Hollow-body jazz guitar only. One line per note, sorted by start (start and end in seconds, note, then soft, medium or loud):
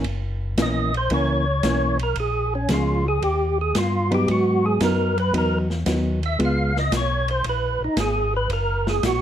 0.58 0.91 E3 medium
0.58 0.91 A#3 medium
0.58 0.91 C#4 medium
1.11 1.44 E3 medium
1.11 1.44 A#3 medium
1.11 1.44 C#4 medium
1.64 1.97 E3 medium
1.64 1.97 A#3 medium
1.64 1.97 C#4 medium
2.70 3.03 F3 medium
2.70 3.03 G#3 medium
2.70 3.03 C#4 medium
4.11 4.77 F#3 medium
4.11 4.78 B3 medium
4.11 4.78 D#4 medium
4.81 5.14 F#3 medium
4.81 5.14 B3 medium
4.81 5.14 D#4 medium
5.34 5.66 F#3 medium
5.34 5.67 B3 medium
5.34 5.67 D#4 medium
5.86 6.19 F#3 soft
5.86 6.19 B3 soft
5.86 6.20 D#4 soft
6.39 6.72 G#3 medium
6.39 6.72 B3 medium
6.39 6.72 F4 medium